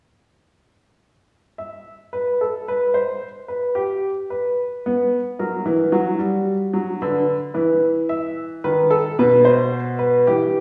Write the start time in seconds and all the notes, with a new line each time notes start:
1.58 E5
2.13 B4
2.41 A4
2.68 B4
2.94 C5
3.48 B4
3.75 G4
4.30 B4
4.86 B3
5.39 F#3 A#4
5.66 E3
5.92 F#3 F#4
6.19 G3
6.74 F#3
7.02 D3 B4
7.54 E3 B4
8.09 E5
8.64 D#3 B4
8.91 A4
9.19 B2 B4
9.45 C5
9.99 B4
10.27 E3 G4